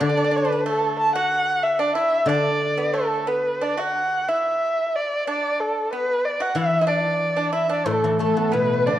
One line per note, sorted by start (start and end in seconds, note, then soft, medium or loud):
0.00 1.94 D3 medium
0.00 0.08 D4 medium
0.00 0.38 D5 medium
0.09 0.16 D4 medium
0.17 0.23 D4 medium
0.24 0.30 D4 soft
0.31 0.36 D4 medium
0.36 0.44 D4 soft
0.36 0.67 B4 medium
0.45 0.51 D4 medium
0.52 0.59 D4 medium
0.66 1.11 A3 medium
0.66 0.97 A4 medium
0.99 1.14 A5 medium
1.15 1.75 F#4 medium
1.15 1.64 F#5 medium
1.63 1.80 E5 medium
1.79 1.94 D4 medium
1.79 1.95 D5 medium
1.95 2.25 E4 medium
1.95 2.28 E5 medium
2.26 4.27 D3 medium
2.26 2.74 D4 medium
2.26 2.94 D5 medium
2.77 2.93 B3 medium
2.93 3.25 A3 medium
2.93 3.29 A4 medium
3.27 3.58 B3 medium
3.27 3.63 B4 medium
3.61 3.77 D4 medium
3.61 3.80 D5 medium
3.77 4.25 F#4 medium
3.77 4.30 F#5 medium
4.28 5.24 E4 medium
4.28 4.97 E5 medium
4.95 5.27 D5 medium
5.27 5.89 D4 medium
5.27 5.61 D5 medium
5.60 5.92 A4 medium
5.92 6.37 B3 medium
5.92 6.26 B4 medium
6.25 6.43 D5 medium
6.40 6.55 F#4 medium
6.40 6.58 F#5 medium
6.55 8.03 E3 medium
6.55 6.80 E4 medium
6.55 6.90 E5 medium
6.81 6.86 E4 medium
6.87 7.34 D4 medium
6.87 7.54 D5 medium
7.37 7.52 D4 medium
7.53 7.69 E4 medium
7.53 7.68 E5 medium
7.68 7.85 D4 medium
7.68 7.74 E5 medium
7.73 7.90 D5 medium
7.86 8.99 A2 medium
7.86 8.18 A3 medium
7.86 8.20 A4 medium
8.04 8.99 E3 soft
8.19 8.54 A2 medium
8.19 8.51 A3 medium
8.19 8.99 A3 soft
8.19 8.55 A4 medium
8.19 8.53 A4 medium
8.37 8.99 B3 soft
8.52 8.89 B2 medium
8.52 8.84 B3 medium
8.52 8.99 E4 soft
8.52 8.87 B4 medium
8.52 8.89 B4 medium
8.86 8.99 D3 medium
8.86 8.99 D4 medium
8.86 8.99 D5 medium